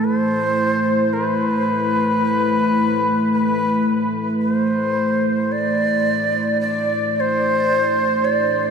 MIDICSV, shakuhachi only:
0, 0, Header, 1, 2, 480
1, 0, Start_track
1, 0, Tempo, 1088929
1, 25, Time_signature, 4, 2, 24, 8
1, 3837, End_track
2, 0, Start_track
2, 0, Title_t, "Shakuhachi"
2, 0, Program_c, 0, 77
2, 19, Note_on_c, 0, 71, 97
2, 68, Note_off_c, 0, 71, 0
2, 68, Note_on_c, 0, 72, 97
2, 498, Note_on_c, 0, 70, 86
2, 505, Note_off_c, 0, 72, 0
2, 547, Note_off_c, 0, 70, 0
2, 547, Note_on_c, 0, 71, 86
2, 1463, Note_off_c, 0, 71, 0
2, 1469, Note_on_c, 0, 71, 92
2, 1814, Note_off_c, 0, 71, 0
2, 1948, Note_on_c, 0, 71, 96
2, 1996, Note_off_c, 0, 71, 0
2, 1996, Note_on_c, 0, 72, 96
2, 2432, Note_on_c, 0, 74, 102
2, 2439, Note_off_c, 0, 72, 0
2, 2910, Note_off_c, 0, 74, 0
2, 2913, Note_on_c, 0, 74, 104
2, 3154, Note_off_c, 0, 74, 0
2, 3154, Note_on_c, 0, 74, 105
2, 3174, Note_on_c, 0, 72, 114
2, 3179, Note_off_c, 0, 74, 0
2, 3634, Note_on_c, 0, 74, 97
2, 3641, Note_off_c, 0, 72, 0
2, 3837, Note_off_c, 0, 74, 0
2, 3837, End_track
0, 0, End_of_file